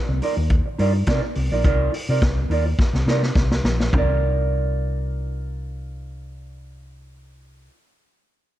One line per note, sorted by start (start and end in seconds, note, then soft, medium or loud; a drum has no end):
0.09 0.19 C2 loud
0.09 muted clean electric guitar stroke soft
0.22 0.37 D#4 medium
0.22 0.37 F4 medium
0.22 0.36 A#4 medium
0.22 0.36 D5 medium
0.22 open hi-hat medium
0.37 0.59 D#2 medium
0.37 muted clean electric guitar stroke soft
0.50 kick loud
0.50 closed hi-hat medium
0.66 muted clean electric guitar stroke soft
0.79 1.02 G2 medium
0.79 0.94 D#4 medium
0.79 0.93 F4 medium
0.79 0.93 A#4 medium
0.79 0.93 D5 medium
0.79 open hi-hat medium
0.94 muted clean electric guitar stroke soft
1.07 1.19 C3 loud
1.07 1.23 D#4 medium
1.07 1.23 F4 medium
1.07 1.22 A#4 loud
1.07 1.22 D5 loud
1.07 kick loud
1.07 snare loud
1.07 closed hi-hat medium
1.23 muted clean electric guitar stroke medium
1.35 1.48 C2 loud
1.35 muted clean electric guitar stroke soft
1.35 open hi-hat medium
1.52 1.62 A#1 medium
1.52 1.63 D#4 medium
1.52 1.63 F4 medium
1.52 1.62 A#4 medium
1.52 1.62 D5 medium
1.64 1.87 C2 loud
1.64 1.91 D#4 medium
1.64 1.91 F4 loud
1.64 1.91 A#4 loud
1.64 1.91 D5 loud
1.64 kick loud
1.64 closed hi-hat medium
1.94 muted clean electric guitar stroke soft
1.94 open hi-hat medium
2.09 2.19 C3 medium
2.09 2.20 D#4 medium
2.09 2.20 F4 medium
2.09 2.20 A#4 medium
2.09 2.20 D5 medium
2.22 2.44 C2 loud
2.22 muted clean electric guitar stroke soft
2.22 kick loud
2.22 snare loud
2.22 closed hi-hat medium
2.38 muted clean electric guitar stroke medium
2.50 2.73 D#2 medium
2.50 2.66 D#4 medium
2.50 2.66 F4 medium
2.50 2.66 A#4 medium
2.50 2.65 D5 medium
2.50 open hi-hat medium
2.66 muted clean electric guitar stroke medium
2.79 kick loud
2.79 snare medium
2.93 3.04 C2 loud
2.93 muted clean electric guitar stroke soft
2.93 snare medium
3.06 3.29 C3 medium
3.06 3.23 D#4 medium
3.06 3.23 F4 medium
3.06 3.23 A#4 medium
3.06 3.22 D5 medium
3.06 snare medium
3.23 snare medium
3.35 3.58 C2 medium
3.35 muted clean electric guitar stroke soft
3.35 kick loud
3.35 snare medium
3.51 muted clean electric guitar stroke medium
3.51 snare medium
3.64 3.87 A#1 loud
3.64 snare loud
3.80 muted clean electric guitar stroke medium
3.80 snare medium
3.93 7.68 C2 loud
3.93 7.72 D#4 medium
3.93 7.73 F4 medium
3.93 7.73 A#4 medium
3.93 kick loud
3.93 floor tom loud
3.98 7.74 D5 medium